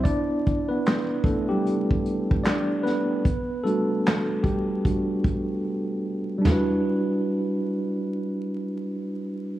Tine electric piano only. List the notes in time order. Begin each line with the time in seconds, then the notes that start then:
0.04 B3 D4 E4 D5
0.69 B3 B4
1.24 A3 B3 D4 E4 A4
1.49 G3 G4
2.44 D4 D5
2.83 B3 B4
3.64 G3 A3 D4 F#4 A4
4.43 G3 G4
4.85 G3 D4 F#4
6.38 G3 D4
6.45 E4 F#4
6.52 B4